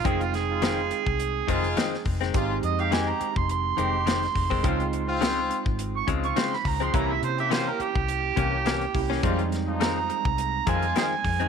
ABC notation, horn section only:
X:1
M:4/4
L:1/16
Q:"Swing 16ths" 1/4=104
K:Fm
V:1 name="Horn section"
[A,EF]2 z [A,EF]3 z4 [A,EF]3 z3 | [A,EF]2 z [A,EG]3 z4 [A,EG]3 z3 | [CDF]2 z [CF]3 z4 [CF]3 z3 | [B,D=E]2 z [B,DG]3 z4 [B,DG]3 z3 |
[A,EF]2 z [F,E]3 z4 [F,EF]3 z3 |]